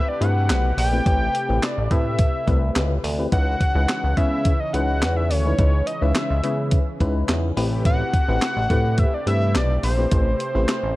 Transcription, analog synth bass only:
0, 0, Header, 1, 2, 480
1, 0, Start_track
1, 0, Tempo, 566038
1, 898, Time_signature, 4, 2, 24, 8
1, 9294, End_track
2, 0, Start_track
2, 0, Title_t, "Analog synth bass"
2, 0, Program_c, 0, 38
2, 178, Note_on_c, 0, 43, 100
2, 417, Note_on_c, 0, 35, 105
2, 430, Note_off_c, 0, 43, 0
2, 616, Note_off_c, 0, 35, 0
2, 657, Note_on_c, 0, 34, 100
2, 856, Note_off_c, 0, 34, 0
2, 899, Note_on_c, 0, 33, 99
2, 1097, Note_off_c, 0, 33, 0
2, 1264, Note_on_c, 0, 33, 94
2, 1358, Note_off_c, 0, 33, 0
2, 1506, Note_on_c, 0, 33, 99
2, 1599, Note_off_c, 0, 33, 0
2, 1617, Note_on_c, 0, 45, 110
2, 1921, Note_off_c, 0, 45, 0
2, 2098, Note_on_c, 0, 36, 102
2, 2297, Note_off_c, 0, 36, 0
2, 2335, Note_on_c, 0, 37, 97
2, 2535, Note_off_c, 0, 37, 0
2, 2576, Note_on_c, 0, 38, 105
2, 2776, Note_off_c, 0, 38, 0
2, 2817, Note_on_c, 0, 37, 90
2, 3016, Note_off_c, 0, 37, 0
2, 3181, Note_on_c, 0, 37, 106
2, 3277, Note_off_c, 0, 37, 0
2, 3423, Note_on_c, 0, 37, 108
2, 3517, Note_off_c, 0, 37, 0
2, 3535, Note_on_c, 0, 49, 103
2, 3841, Note_off_c, 0, 49, 0
2, 4016, Note_on_c, 0, 37, 100
2, 4257, Note_on_c, 0, 40, 101
2, 4270, Note_off_c, 0, 37, 0
2, 4498, Note_on_c, 0, 38, 104
2, 4511, Note_off_c, 0, 40, 0
2, 4697, Note_off_c, 0, 38, 0
2, 4737, Note_on_c, 0, 37, 104
2, 4937, Note_off_c, 0, 37, 0
2, 5105, Note_on_c, 0, 37, 104
2, 5198, Note_off_c, 0, 37, 0
2, 5345, Note_on_c, 0, 37, 100
2, 5439, Note_off_c, 0, 37, 0
2, 5459, Note_on_c, 0, 49, 98
2, 5763, Note_off_c, 0, 49, 0
2, 5939, Note_on_c, 0, 37, 95
2, 6137, Note_off_c, 0, 37, 0
2, 6180, Note_on_c, 0, 40, 110
2, 6378, Note_off_c, 0, 40, 0
2, 6419, Note_on_c, 0, 33, 102
2, 6816, Note_off_c, 0, 33, 0
2, 7025, Note_on_c, 0, 33, 97
2, 7119, Note_off_c, 0, 33, 0
2, 7264, Note_on_c, 0, 33, 97
2, 7358, Note_off_c, 0, 33, 0
2, 7377, Note_on_c, 0, 45, 108
2, 7682, Note_off_c, 0, 45, 0
2, 7857, Note_on_c, 0, 43, 103
2, 8098, Note_on_c, 0, 35, 104
2, 8111, Note_off_c, 0, 43, 0
2, 8297, Note_off_c, 0, 35, 0
2, 8339, Note_on_c, 0, 34, 98
2, 8537, Note_off_c, 0, 34, 0
2, 8578, Note_on_c, 0, 33, 98
2, 8777, Note_off_c, 0, 33, 0
2, 8946, Note_on_c, 0, 33, 92
2, 9039, Note_off_c, 0, 33, 0
2, 9186, Note_on_c, 0, 33, 110
2, 9279, Note_off_c, 0, 33, 0
2, 9294, End_track
0, 0, End_of_file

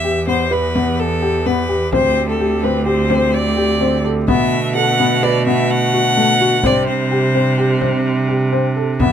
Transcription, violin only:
0, 0, Header, 1, 2, 480
1, 0, Start_track
1, 0, Tempo, 471328
1, 1964, Time_signature, 5, 2, 24, 8
1, 9291, End_track
2, 0, Start_track
2, 0, Title_t, "Violin"
2, 0, Program_c, 0, 40
2, 0, Note_on_c, 0, 76, 89
2, 248, Note_off_c, 0, 76, 0
2, 286, Note_on_c, 0, 72, 79
2, 532, Note_on_c, 0, 71, 78
2, 548, Note_off_c, 0, 72, 0
2, 1013, Note_on_c, 0, 69, 81
2, 1028, Note_off_c, 0, 71, 0
2, 1491, Note_on_c, 0, 71, 78
2, 1507, Note_off_c, 0, 69, 0
2, 1962, Note_off_c, 0, 71, 0
2, 1968, Note_on_c, 0, 72, 83
2, 2301, Note_off_c, 0, 72, 0
2, 2331, Note_on_c, 0, 69, 71
2, 2683, Note_on_c, 0, 71, 75
2, 2699, Note_off_c, 0, 69, 0
2, 2912, Note_off_c, 0, 71, 0
2, 2918, Note_on_c, 0, 72, 77
2, 3402, Note_on_c, 0, 74, 82
2, 3417, Note_off_c, 0, 72, 0
2, 4123, Note_off_c, 0, 74, 0
2, 4359, Note_on_c, 0, 76, 88
2, 4808, Note_off_c, 0, 76, 0
2, 4843, Note_on_c, 0, 78, 91
2, 5329, Note_on_c, 0, 74, 83
2, 5344, Note_off_c, 0, 78, 0
2, 5566, Note_off_c, 0, 74, 0
2, 5572, Note_on_c, 0, 76, 85
2, 5807, Note_on_c, 0, 78, 104
2, 5822, Note_off_c, 0, 76, 0
2, 6782, Note_on_c, 0, 74, 84
2, 6798, Note_off_c, 0, 78, 0
2, 7005, Note_off_c, 0, 74, 0
2, 7011, Note_on_c, 0, 72, 73
2, 8407, Note_off_c, 0, 72, 0
2, 9172, Note_on_c, 0, 76, 78
2, 9291, Note_off_c, 0, 76, 0
2, 9291, End_track
0, 0, End_of_file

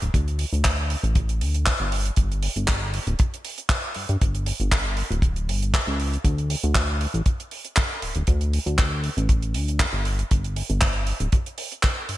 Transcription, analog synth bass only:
0, 0, Header, 1, 2, 480
1, 0, Start_track
1, 0, Tempo, 508475
1, 135, Time_signature, 4, 2, 24, 8
1, 11493, End_track
2, 0, Start_track
2, 0, Title_t, "Analog synth bass"
2, 0, Program_c, 0, 38
2, 21, Note_on_c, 0, 26, 82
2, 94, Note_off_c, 0, 26, 0
2, 130, Note_on_c, 0, 38, 96
2, 427, Note_off_c, 0, 38, 0
2, 497, Note_on_c, 0, 38, 96
2, 907, Note_off_c, 0, 38, 0
2, 977, Note_on_c, 0, 33, 99
2, 1331, Note_on_c, 0, 38, 80
2, 1345, Note_off_c, 0, 33, 0
2, 1627, Note_off_c, 0, 38, 0
2, 1699, Note_on_c, 0, 31, 99
2, 1989, Note_off_c, 0, 31, 0
2, 2050, Note_on_c, 0, 31, 95
2, 2347, Note_off_c, 0, 31, 0
2, 2418, Note_on_c, 0, 31, 96
2, 2828, Note_off_c, 0, 31, 0
2, 2899, Note_on_c, 0, 26, 99
2, 2974, Note_off_c, 0, 26, 0
2, 3738, Note_on_c, 0, 43, 42
2, 3837, Note_off_c, 0, 43, 0
2, 3863, Note_on_c, 0, 43, 81
2, 3936, Note_off_c, 0, 43, 0
2, 3979, Note_on_c, 0, 31, 99
2, 4271, Note_off_c, 0, 31, 0
2, 4341, Note_on_c, 0, 31, 97
2, 4749, Note_off_c, 0, 31, 0
2, 4819, Note_on_c, 0, 26, 97
2, 5174, Note_on_c, 0, 31, 82
2, 5188, Note_off_c, 0, 26, 0
2, 5468, Note_off_c, 0, 31, 0
2, 5544, Note_on_c, 0, 37, 95
2, 5831, Note_off_c, 0, 37, 0
2, 5894, Note_on_c, 0, 38, 96
2, 6189, Note_off_c, 0, 38, 0
2, 6265, Note_on_c, 0, 38, 96
2, 6671, Note_off_c, 0, 38, 0
2, 6740, Note_on_c, 0, 33, 95
2, 6814, Note_off_c, 0, 33, 0
2, 7574, Note_on_c, 0, 26, 42
2, 7676, Note_off_c, 0, 26, 0
2, 7701, Note_on_c, 0, 26, 82
2, 7774, Note_off_c, 0, 26, 0
2, 7814, Note_on_c, 0, 38, 95
2, 8109, Note_off_c, 0, 38, 0
2, 8177, Note_on_c, 0, 38, 97
2, 8587, Note_off_c, 0, 38, 0
2, 8657, Note_on_c, 0, 33, 98
2, 9010, Note_on_c, 0, 38, 82
2, 9025, Note_off_c, 0, 33, 0
2, 9307, Note_off_c, 0, 38, 0
2, 9372, Note_on_c, 0, 31, 93
2, 9666, Note_off_c, 0, 31, 0
2, 9736, Note_on_c, 0, 31, 96
2, 10030, Note_off_c, 0, 31, 0
2, 10097, Note_on_c, 0, 31, 99
2, 10507, Note_off_c, 0, 31, 0
2, 10576, Note_on_c, 0, 26, 99
2, 10652, Note_off_c, 0, 26, 0
2, 11413, Note_on_c, 0, 43, 42
2, 11493, Note_off_c, 0, 43, 0
2, 11493, End_track
0, 0, End_of_file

